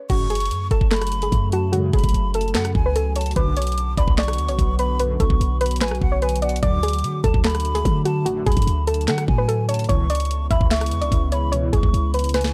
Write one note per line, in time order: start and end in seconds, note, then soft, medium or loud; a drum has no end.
0.10 0.52 F#1 loud
0.10 0.27 A1 loud
0.10 0.27 G#2 loud
0.10 0.27 C#3 loud
0.10 3.33 C#3 medium
0.10 3.33 F#3 medium
0.10 3.33 A3 medium
0.10 0.26 F#4 loud
0.10 9.85 F#4 loud
0.10 0.67 C#6 loud
0.10 kick loud
0.10 closed hi-hat medium
0.10 crash loud
0.30 0.68 G#4 medium
0.30 closed hi-hat medium
0.35 closed hi-hat medium
0.40 closed hi-hat medium
0.45 closed hi-hat medium
0.51 0.70 F#2 loud
0.51 closed hi-hat medium
0.71 0.81 F#1 loud
0.71 0.88 A4 medium
0.71 0.90 A5 medium
0.71 kick medium
0.71 closed hi-hat medium
0.81 1.30 F#1 loud
0.81 kick loud
0.91 1.20 A4 medium
0.91 1.49 B5 loud
0.91 snare loud
0.91 clap medium
0.91 closed hi-hat soft
0.96 closed hi-hat medium
1.02 cross-stick loud
1.02 closed hi-hat medium
1.07 closed hi-hat medium
1.12 closed hi-hat medium
1.22 1.51 G#4 medium
1.22 closed hi-hat medium
1.32 1.91 F#2 loud
1.32 kick loud
1.32 closed hi-hat medium
1.52 1.69 F#4 medium
1.52 1.72 A5 medium
1.52 closed hi-hat medium
1.72 1.90 A1 loud
1.72 1.90 G#2 loud
1.72 1.90 C#3 loud
1.72 1.89 F#4 medium
1.72 closed hi-hat medium
1.93 2.03 F#1 loud
1.93 2.32 G#4 medium
1.93 2.32 B5 medium
1.93 kick loud
1.93 closed hi-hat medium
1.98 closed hi-hat medium
2.04 2.13 A1 loud
2.04 kick loud
2.04 closed hi-hat medium
2.09 closed hi-hat medium
2.14 2.56 F#1 loud
2.14 closed hi-hat medium
2.34 2.51 A4 medium
2.34 2.54 A5 medium
2.34 closed hi-hat medium
2.41 closed hi-hat medium
2.48 closed hi-hat soft
2.54 2.74 F#2 loud
2.54 2.84 A4 medium
2.54 2.74 F#5 medium
2.54 snare loud
2.54 clap medium
2.54 closed hi-hat soft
2.65 cross-stick loud
2.65 closed hi-hat medium
2.75 3.34 C#2 loud
2.75 3.13 G#5 medium
2.75 kick loud
2.86 2.94 B4 medium
2.96 3.12 A4 medium
2.96 closed hi-hat medium
3.16 3.32 C#5 medium
3.16 3.35 A5 medium
3.16 closed hi-hat medium
3.16 open hi-hat medium
3.21 closed hi-hat medium
3.26 closed hi-hat medium
3.31 closed hi-hat soft
3.36 3.95 B1 loud
3.36 3.54 B1 loud
3.36 3.54 F#2 loud
3.36 6.59 D3 medium
3.36 3.54 D3 loud
3.36 9.85 F#3 medium
3.36 6.59 B3 medium
3.36 3.53 B4 loud
3.36 3.94 D6 loud
3.36 kick loud
3.36 closed hi-hat medium
3.57 3.95 C#5 medium
3.57 closed hi-hat medium
3.62 closed hi-hat medium
3.67 closed hi-hat medium
3.72 closed hi-hat medium
3.78 closed hi-hat medium
3.97 4.07 B1 loud
3.97 4.14 D5 medium
3.97 4.17 B5 medium
3.97 kick medium
3.97 closed hi-hat medium
4.08 4.40 B1 loud
4.08 kick loud
4.18 4.47 D5 medium
4.18 4.75 C#6 medium
4.18 snare loud
4.18 clap medium
4.18 closed hi-hat soft
4.23 closed hi-hat medium
4.28 cross-stick loud
4.28 closed hi-hat medium
4.33 closed hi-hat medium
4.38 4.50 D2 loud
4.38 closed hi-hat medium
4.48 4.58 B1 loud
4.48 4.77 C#5 medium
4.48 closed hi-hat medium
4.59 5.17 B1 loud
4.59 kick loud
4.59 closed hi-hat medium
4.79 4.96 B4 medium
4.79 4.98 B5 medium
4.79 closed hi-hat medium
4.99 5.17 B1 medium
4.99 5.17 F#2 medium
4.99 5.17 D3 loud
4.99 5.16 B4 medium
4.99 closed hi-hat medium
5.20 5.30 B1 loud
5.20 5.58 A4 medium
5.20 5.58 C#6 medium
5.20 kick loud
5.20 closed hi-hat medium
5.30 5.40 B1 loud
5.30 kick loud
5.40 5.83 B1 loud
5.40 closed hi-hat medium
5.61 5.77 B4 medium
5.61 5.80 B5 medium
5.61 closed hi-hat medium
5.66 closed hi-hat medium
5.71 closed hi-hat medium
5.76 closed hi-hat medium
5.81 5.93 A1 loud
5.81 6.10 B4 medium
5.81 6.00 G#5 medium
5.81 snare loud
5.81 clap medium
5.81 closed hi-hat medium
5.88 6.01 B1 loud
5.88 cross-stick loud
5.88 closed hi-hat medium
5.95 closed hi-hat soft
6.02 6.60 B1 loud
6.02 6.21 F#5 medium
6.02 kick loud
6.12 6.20 C#5 medium
6.22 6.39 B4 medium
6.22 6.41 G#5 medium
6.22 closed hi-hat soft
6.29 closed hi-hat medium
6.36 closed hi-hat medium
6.42 6.59 D5 medium
6.42 6.62 F#5 medium
6.42 closed hi-hat soft
6.42 open hi-hat medium
6.49 closed hi-hat medium
6.56 closed hi-hat medium
6.63 6.80 A1 loud
6.63 7.05 D2 loud
6.63 6.80 F#2 loud
6.63 6.80 D3 loud
6.63 9.86 D3 medium
6.63 9.86 A3 medium
6.63 6.79 D5 loud
6.63 7.21 D6 loud
6.63 kick loud
6.63 closed hi-hat medium
6.83 7.21 G#4 medium
6.83 closed hi-hat loud
6.88 closed hi-hat medium
6.93 closed hi-hat medium
6.99 closed hi-hat medium
7.04 7.23 D3 loud
7.04 closed hi-hat medium
7.24 7.34 D2 loud
7.24 7.40 A4 medium
7.24 7.44 A5 medium
7.24 kick medium
7.24 closed hi-hat medium
7.34 7.83 D2 loud
7.34 kick loud
7.44 7.73 A4 medium
7.44 8.02 B5 medium
7.44 snare loud
7.44 clap medium
7.44 closed hi-hat soft
7.50 closed hi-hat medium
7.55 cross-stick medium
7.55 closed hi-hat medium
7.60 closed hi-hat medium
7.65 closed hi-hat medium
7.75 8.04 G#4 medium
7.75 closed hi-hat medium
7.85 8.44 D3 loud
7.85 kick loud
7.85 closed hi-hat medium
8.05 8.22 F#4 medium
8.05 8.25 A5 medium
8.05 closed hi-hat medium
8.25 8.43 A1 loud
8.25 8.43 F#2 loud
8.25 8.43 D3 loud
8.25 8.42 F#4 medium
8.25 closed hi-hat medium
8.46 8.56 D2 loud
8.46 8.85 G#4 medium
8.46 8.85 B5 medium
8.46 kick loud
8.46 closed hi-hat medium
8.52 closed hi-hat medium
8.57 8.66 F#2 loud
8.57 kick loud
8.57 closed hi-hat medium
8.62 closed hi-hat medium
8.67 9.09 D2 loud
8.67 closed hi-hat medium
8.87 9.04 A4 medium
8.87 9.07 A5 medium
8.87 closed hi-hat medium
8.94 closed hi-hat medium
9.01 closed hi-hat soft
9.08 9.27 D3 loud
9.08 9.37 A4 medium
9.08 9.27 F#5 medium
9.08 snare loud
9.08 clap medium
9.08 closed hi-hat soft
9.18 cross-stick loud
9.18 closed hi-hat medium
9.28 9.87 A2 loud
9.28 9.66 G#5 medium
9.28 kick loud
9.38 9.47 B4 medium
9.48 9.65 A4 medium
9.48 closed hi-hat medium
9.69 9.85 C#5 medium
9.69 9.88 A5 medium
9.69 closed hi-hat medium
9.69 open hi-hat medium
9.74 closed hi-hat medium
9.79 closed hi-hat medium
9.84 closed hi-hat soft
9.89 10.07 C#2 medium
9.89 10.48 C#2 loud
9.89 10.07 B2 loud
9.89 12.54 C#3 medium
9.89 10.07 E3 loud
9.89 12.54 G#3 medium
9.89 12.54 B3 medium
9.89 12.54 E4 loud
9.89 10.05 C#5 loud
9.89 10.47 C#6 loud
9.89 kick loud
9.89 closed hi-hat medium
10.10 10.48 D5 medium
10.10 closed hi-hat medium
10.15 closed hi-hat medium
10.20 closed hi-hat medium
10.25 closed hi-hat medium
10.31 closed hi-hat medium
10.51 10.60 C#2 loud
10.51 10.67 E5 medium
10.51 10.70 B5 medium
10.51 kick medium
10.51 closed hi-hat medium
10.61 10.93 C#2 loud
10.61 kick loud
10.71 11.00 E5 medium
10.71 11.29 C#6 medium
10.71 snare loud
10.71 clap medium
10.71 closed hi-hat soft
10.76 closed hi-hat medium
10.81 cross-stick loud
10.81 closed hi-hat medium
10.86 closed hi-hat medium
10.91 11.03 E2 loud
10.91 closed hi-hat medium
11.01 11.11 C#2 loud
11.01 11.30 D5 medium
11.01 closed hi-hat medium
11.12 11.71 C#2 loud
11.12 kick loud
11.12 closed hi-hat medium
11.32 11.49 C#5 medium
11.32 11.52 B5 medium
11.32 closed hi-hat medium
11.52 11.70 C#2 loud
11.52 11.70 B2 loud
11.52 11.70 E3 loud
11.52 11.69 C#5 medium
11.52 closed hi-hat medium
11.73 11.83 C#2 loud
11.73 12.11 G#4 medium
11.73 12.12 C#6 medium
11.73 kick loud
11.73 closed hi-hat medium
11.83 11.93 C#2 loud
11.83 kick loud
11.93 12.54 C#2 loud
11.93 closed hi-hat medium
12.14 12.31 B4 medium
12.14 12.33 B5 medium
12.14 closed hi-hat medium
12.19 closed hi-hat medium
12.24 closed hi-hat medium
12.29 closed hi-hat medium
12.34 12.54 B4 medium
12.34 12.54 G#5 medium
12.34 snare medium
12.34 closed hi-hat medium
12.41 snare medium
12.41 closed hi-hat medium
12.48 closed hi-hat soft